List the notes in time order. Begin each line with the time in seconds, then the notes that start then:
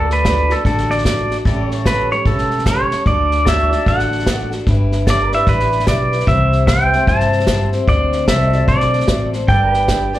Already playing: D2 D3 A3 D4 F#4 A4 B4 D5
0.10 A4 B4, snare
0.25 A3 D4 F#4 A4 D5, kick, snare, hi-hat pedal
0.49 D4 F#4 A4 D5, snare
0.65 A1 D3 A3 D4 F#4 A4, kick, snare
0.78 snare
0.90 D5, snare
0.98 snare
1.04 A3 D4 F#4 A4 D5, kick, snare, hi-hat pedal
1.08 A4
1.30 D4 F#4 A4, snare
1.45 A1 A2 E3 G3 C#4 G4 A4 D5, kick, snare
1.67 C#5
1.71 snare
1.84 G3 C#4 G4 A4 B4 C#5, kick, snare, hi-hat pedal
1.88 A4
2.11 G3 C#4 G4 A4 C#5, snare
2.25 E1 A2 E3 G3 C#4 G4 A4, kick, snare
2.38 snare
2.51 snare
2.58 snare
2.65 G3 C#4 G4 A4 C#5, kick, snare, hi-hat pedal
2.90 G3 C#4 G4 A4, snare
3.06 D2 D3 A3 D4 F#4 A4 D5, kick, snare
3.31 snare
3.45 A3 D4 F#4 A4 C#5 D5 E5, kick, snare, hi-hat pedal
3.67 F#4 A4 D5
3.71 D4 F#4 A4 D5, snare
3.86 A1 D3 A3 D4 F#4 A4 F#5, kick, snare
3.99 snare
4.12 snare
4.19 snare
4.26 A3 D4 F#4 A4 D5, kick, snare, hi-hat pedal
4.51 D4 F#4 A4, snare
4.67 G1 G3 D4 E4 B4, kick, snare
4.92 snare
5.06 G3 D4 E4 G4 A4 B4 D5 E5, kick, snare, hi-hat pedal
5.32 D4 E4 G4 B4 E5, snare
5.46 A1 G3 D4 E4 B4, kick, snare
5.60 snare
5.72 snare
5.80 snare
5.86 B1 G3 D4 E4 G4 B4 D5 E5, kick, snare, hi-hat pedal
5.91 B4
6.12 D4 E4 B4, snare
6.20 snare
6.27 C2 C3 E3 G3 C4 E4 C5 E5, kick, snare
6.52 snare
6.67 C4 E4 G4 B4 C5 E5 G5, kick, snare, hi-hat pedal
6.88 G4 C5
6.93 G3 C4 E4 C5 E5, snare
7.07 G2 C3 E3 G3 C4 E4 C5 A5, kick, snare
7.20 snare
7.32 snare
7.40 snare
7.47 G3 C4 E4 G4 C5 F#5, kick, snare, hi-hat pedal
7.72 G3 C4 E4 C5, snare
7.87 D2 D3 A3 C4 F#4 C5 D5, kick, snare
8.12 snare
8.27 C2 A3 C4 F#4 A4 C5 D5 E5, kick, snare, hi-hat pedal
8.52 F#4 D5, snare
8.67 B1 D3 A3 C4 F#4 C5 D5, kick, snare
8.80 snare
8.93 snare
9.00 snare
9.07 A1 A3 C4 F#4 C5 E5, kick, snare, hi-hat pedal
9.33 C4 F#4 C5, snare
9.48 G1 G3 D4 G4 A4 B4 D5 G5, kick, snare
9.73 B4, snare
9.87 G3 D4 G4 B4 D5, kick, snare, hi-hat pedal
10.13 G4 B4 D5, snare